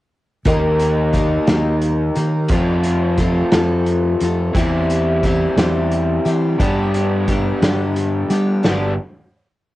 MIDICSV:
0, 0, Header, 1, 5, 480
1, 0, Start_track
1, 0, Tempo, 681818
1, 325, Time_signature, 6, 3, 24, 8
1, 6864, End_track
2, 0, Start_track
2, 0, Title_t, "Steel-string acoustic guitar"
2, 0, Program_c, 0, 25
2, 317, Note_on_c, 0, 51, 68
2, 323, Note_on_c, 0, 55, 70
2, 327, Note_on_c, 0, 58, 80
2, 328, Note_on_c, 0, 63, 71
2, 330, Note_on_c, 0, 70, 68
2, 787, Note_off_c, 0, 55, 0
2, 795, Note_on_c, 0, 55, 59
2, 796, Note_off_c, 0, 58, 0
2, 797, Note_off_c, 0, 63, 0
2, 798, Note_off_c, 0, 70, 0
2, 801, Note_off_c, 0, 51, 0
2, 805, Note_on_c, 0, 58, 67
2, 805, Note_on_c, 0, 63, 74
2, 807, Note_on_c, 0, 70, 69
2, 1027, Note_off_c, 0, 70, 0
2, 1031, Note_off_c, 0, 63, 0
2, 1034, Note_off_c, 0, 58, 0
2, 1035, Note_on_c, 0, 70, 64
2, 1037, Note_off_c, 0, 55, 0
2, 1039, Note_on_c, 0, 63, 62
2, 1043, Note_on_c, 0, 58, 59
2, 1046, Note_on_c, 0, 55, 55
2, 1047, Note_on_c, 0, 51, 58
2, 1506, Note_off_c, 0, 70, 0
2, 1514, Note_off_c, 0, 63, 0
2, 1515, Note_on_c, 0, 70, 47
2, 1519, Note_off_c, 0, 58, 0
2, 1522, Note_on_c, 0, 63, 49
2, 1525, Note_off_c, 0, 55, 0
2, 1526, Note_off_c, 0, 51, 0
2, 1528, Note_on_c, 0, 58, 43
2, 1760, Note_off_c, 0, 70, 0
2, 1764, Note_off_c, 0, 63, 0
2, 1764, Note_on_c, 0, 53, 64
2, 1765, Note_off_c, 0, 58, 0
2, 1767, Note_on_c, 0, 60, 69
2, 1771, Note_on_c, 0, 65, 69
2, 1772, Note_on_c, 0, 69, 67
2, 2235, Note_off_c, 0, 53, 0
2, 2244, Note_on_c, 0, 53, 62
2, 2245, Note_off_c, 0, 65, 0
2, 2246, Note_off_c, 0, 60, 0
2, 2249, Note_off_c, 0, 69, 0
2, 2249, Note_on_c, 0, 60, 64
2, 2253, Note_on_c, 0, 65, 69
2, 2256, Note_on_c, 0, 69, 66
2, 2485, Note_off_c, 0, 53, 0
2, 2485, Note_off_c, 0, 69, 0
2, 2487, Note_off_c, 0, 60, 0
2, 2489, Note_off_c, 0, 65, 0
2, 2494, Note_on_c, 0, 69, 69
2, 2499, Note_on_c, 0, 65, 68
2, 2500, Note_on_c, 0, 60, 58
2, 2505, Note_on_c, 0, 53, 60
2, 2961, Note_off_c, 0, 69, 0
2, 2969, Note_on_c, 0, 69, 51
2, 2973, Note_off_c, 0, 60, 0
2, 2973, Note_off_c, 0, 65, 0
2, 2976, Note_off_c, 0, 53, 0
2, 2982, Note_on_c, 0, 65, 46
2, 2983, Note_on_c, 0, 60, 41
2, 3208, Note_off_c, 0, 69, 0
2, 3211, Note_off_c, 0, 60, 0
2, 3214, Note_off_c, 0, 65, 0
2, 3215, Note_on_c, 0, 52, 74
2, 3218, Note_on_c, 0, 55, 75
2, 3220, Note_on_c, 0, 60, 75
2, 3225, Note_on_c, 0, 64, 80
2, 3226, Note_on_c, 0, 67, 83
2, 3683, Note_off_c, 0, 55, 0
2, 3685, Note_off_c, 0, 60, 0
2, 3686, Note_on_c, 0, 55, 63
2, 3689, Note_off_c, 0, 64, 0
2, 3691, Note_off_c, 0, 52, 0
2, 3693, Note_on_c, 0, 60, 70
2, 3698, Note_on_c, 0, 64, 74
2, 3699, Note_off_c, 0, 67, 0
2, 3702, Note_on_c, 0, 67, 71
2, 3916, Note_off_c, 0, 67, 0
2, 3919, Note_off_c, 0, 60, 0
2, 3920, Note_off_c, 0, 64, 0
2, 3923, Note_off_c, 0, 55, 0
2, 3924, Note_on_c, 0, 67, 62
2, 3927, Note_on_c, 0, 60, 67
2, 3929, Note_on_c, 0, 64, 65
2, 3932, Note_on_c, 0, 52, 58
2, 3932, Note_on_c, 0, 55, 64
2, 4397, Note_off_c, 0, 67, 0
2, 4400, Note_on_c, 0, 67, 56
2, 4402, Note_off_c, 0, 64, 0
2, 4407, Note_off_c, 0, 60, 0
2, 4410, Note_off_c, 0, 52, 0
2, 4410, Note_on_c, 0, 64, 44
2, 4420, Note_on_c, 0, 60, 45
2, 4644, Note_off_c, 0, 67, 0
2, 4646, Note_on_c, 0, 43, 73
2, 4646, Note_on_c, 0, 50, 75
2, 4648, Note_off_c, 0, 60, 0
2, 4649, Note_off_c, 0, 55, 0
2, 4649, Note_off_c, 0, 64, 0
2, 4651, Note_on_c, 0, 55, 78
2, 4651, Note_on_c, 0, 59, 79
2, 4652, Note_on_c, 0, 62, 82
2, 4652, Note_on_c, 0, 67, 79
2, 5115, Note_off_c, 0, 55, 0
2, 5121, Note_off_c, 0, 59, 0
2, 5124, Note_on_c, 0, 55, 69
2, 5127, Note_off_c, 0, 43, 0
2, 5127, Note_off_c, 0, 50, 0
2, 5129, Note_on_c, 0, 59, 66
2, 5130, Note_off_c, 0, 62, 0
2, 5130, Note_off_c, 0, 67, 0
2, 5138, Note_on_c, 0, 62, 64
2, 5140, Note_on_c, 0, 67, 71
2, 5361, Note_off_c, 0, 67, 0
2, 5363, Note_off_c, 0, 62, 0
2, 5365, Note_off_c, 0, 59, 0
2, 5366, Note_off_c, 0, 55, 0
2, 5369, Note_on_c, 0, 67, 67
2, 5371, Note_on_c, 0, 62, 66
2, 5373, Note_on_c, 0, 59, 58
2, 5378, Note_on_c, 0, 55, 58
2, 5379, Note_on_c, 0, 50, 60
2, 5381, Note_on_c, 0, 43, 50
2, 5834, Note_off_c, 0, 67, 0
2, 5840, Note_off_c, 0, 59, 0
2, 5841, Note_off_c, 0, 62, 0
2, 5842, Note_on_c, 0, 67, 51
2, 5848, Note_on_c, 0, 59, 45
2, 5849, Note_on_c, 0, 62, 49
2, 5850, Note_off_c, 0, 55, 0
2, 5853, Note_off_c, 0, 50, 0
2, 5854, Note_off_c, 0, 43, 0
2, 5858, Note_on_c, 0, 55, 44
2, 6076, Note_off_c, 0, 55, 0
2, 6076, Note_on_c, 0, 43, 71
2, 6080, Note_on_c, 0, 50, 65
2, 6081, Note_off_c, 0, 59, 0
2, 6084, Note_off_c, 0, 62, 0
2, 6084, Note_on_c, 0, 55, 68
2, 6085, Note_off_c, 0, 67, 0
2, 6090, Note_on_c, 0, 59, 72
2, 6092, Note_on_c, 0, 62, 73
2, 6092, Note_on_c, 0, 67, 76
2, 6274, Note_off_c, 0, 43, 0
2, 6275, Note_off_c, 0, 50, 0
2, 6278, Note_off_c, 0, 55, 0
2, 6280, Note_off_c, 0, 59, 0
2, 6282, Note_off_c, 0, 62, 0
2, 6282, Note_off_c, 0, 67, 0
2, 6864, End_track
3, 0, Start_track
3, 0, Title_t, "Overdriven electric guitar"
3, 0, Program_c, 1, 29
3, 341, Note_on_c, 1, 67, 80
3, 1759, Note_off_c, 1, 67, 0
3, 1759, Note_on_c, 1, 41, 90
3, 1762, Note_on_c, 1, 48, 78
3, 1770, Note_on_c, 1, 57, 76
3, 3188, Note_off_c, 1, 41, 0
3, 3190, Note_off_c, 1, 48, 0
3, 3194, Note_off_c, 1, 57, 0
3, 6864, End_track
4, 0, Start_track
4, 0, Title_t, "Fingered electric bass"
4, 0, Program_c, 2, 33
4, 318, Note_on_c, 2, 39, 77
4, 966, Note_off_c, 2, 39, 0
4, 1041, Note_on_c, 2, 39, 80
4, 1473, Note_off_c, 2, 39, 0
4, 1523, Note_on_c, 2, 51, 88
4, 1739, Note_off_c, 2, 51, 0
4, 1756, Note_on_c, 2, 41, 91
4, 2405, Note_off_c, 2, 41, 0
4, 2487, Note_on_c, 2, 41, 79
4, 2916, Note_off_c, 2, 41, 0
4, 2966, Note_on_c, 2, 41, 87
4, 3181, Note_off_c, 2, 41, 0
4, 3200, Note_on_c, 2, 40, 82
4, 3848, Note_off_c, 2, 40, 0
4, 3917, Note_on_c, 2, 40, 83
4, 4351, Note_off_c, 2, 40, 0
4, 4404, Note_on_c, 2, 52, 100
4, 4620, Note_off_c, 2, 52, 0
4, 4647, Note_on_c, 2, 43, 88
4, 5292, Note_off_c, 2, 43, 0
4, 5363, Note_on_c, 2, 43, 82
4, 5795, Note_off_c, 2, 43, 0
4, 5844, Note_on_c, 2, 55, 94
4, 6061, Note_off_c, 2, 55, 0
4, 6089, Note_on_c, 2, 31, 85
4, 6311, Note_off_c, 2, 31, 0
4, 6864, End_track
5, 0, Start_track
5, 0, Title_t, "Drums"
5, 317, Note_on_c, 9, 42, 73
5, 320, Note_on_c, 9, 36, 102
5, 388, Note_off_c, 9, 42, 0
5, 391, Note_off_c, 9, 36, 0
5, 559, Note_on_c, 9, 42, 53
5, 629, Note_off_c, 9, 42, 0
5, 800, Note_on_c, 9, 36, 70
5, 801, Note_on_c, 9, 42, 54
5, 870, Note_off_c, 9, 36, 0
5, 871, Note_off_c, 9, 42, 0
5, 1037, Note_on_c, 9, 42, 80
5, 1040, Note_on_c, 9, 38, 101
5, 1107, Note_off_c, 9, 42, 0
5, 1110, Note_off_c, 9, 38, 0
5, 1278, Note_on_c, 9, 42, 57
5, 1348, Note_off_c, 9, 42, 0
5, 1518, Note_on_c, 9, 42, 55
5, 1588, Note_off_c, 9, 42, 0
5, 1750, Note_on_c, 9, 42, 81
5, 1758, Note_on_c, 9, 36, 102
5, 1820, Note_off_c, 9, 42, 0
5, 1828, Note_off_c, 9, 36, 0
5, 1997, Note_on_c, 9, 42, 58
5, 2068, Note_off_c, 9, 42, 0
5, 2237, Note_on_c, 9, 42, 55
5, 2239, Note_on_c, 9, 36, 64
5, 2308, Note_off_c, 9, 42, 0
5, 2310, Note_off_c, 9, 36, 0
5, 2477, Note_on_c, 9, 42, 76
5, 2480, Note_on_c, 9, 38, 104
5, 2547, Note_off_c, 9, 42, 0
5, 2550, Note_off_c, 9, 38, 0
5, 2720, Note_on_c, 9, 42, 56
5, 2791, Note_off_c, 9, 42, 0
5, 2961, Note_on_c, 9, 42, 59
5, 3031, Note_off_c, 9, 42, 0
5, 3202, Note_on_c, 9, 36, 97
5, 3202, Note_on_c, 9, 42, 74
5, 3272, Note_off_c, 9, 36, 0
5, 3272, Note_off_c, 9, 42, 0
5, 3449, Note_on_c, 9, 42, 54
5, 3520, Note_off_c, 9, 42, 0
5, 3683, Note_on_c, 9, 36, 68
5, 3684, Note_on_c, 9, 42, 50
5, 3753, Note_off_c, 9, 36, 0
5, 3754, Note_off_c, 9, 42, 0
5, 3925, Note_on_c, 9, 42, 72
5, 3928, Note_on_c, 9, 38, 100
5, 3995, Note_off_c, 9, 42, 0
5, 3998, Note_off_c, 9, 38, 0
5, 4164, Note_on_c, 9, 42, 54
5, 4234, Note_off_c, 9, 42, 0
5, 4407, Note_on_c, 9, 42, 58
5, 4477, Note_off_c, 9, 42, 0
5, 4645, Note_on_c, 9, 36, 100
5, 4647, Note_on_c, 9, 42, 78
5, 4715, Note_off_c, 9, 36, 0
5, 4717, Note_off_c, 9, 42, 0
5, 4887, Note_on_c, 9, 42, 55
5, 4957, Note_off_c, 9, 42, 0
5, 5124, Note_on_c, 9, 36, 65
5, 5124, Note_on_c, 9, 42, 59
5, 5195, Note_off_c, 9, 36, 0
5, 5195, Note_off_c, 9, 42, 0
5, 5367, Note_on_c, 9, 42, 77
5, 5370, Note_on_c, 9, 38, 93
5, 5437, Note_off_c, 9, 42, 0
5, 5440, Note_off_c, 9, 38, 0
5, 5604, Note_on_c, 9, 42, 61
5, 5674, Note_off_c, 9, 42, 0
5, 5843, Note_on_c, 9, 42, 60
5, 5913, Note_off_c, 9, 42, 0
5, 6086, Note_on_c, 9, 38, 94
5, 6156, Note_off_c, 9, 38, 0
5, 6864, End_track
0, 0, End_of_file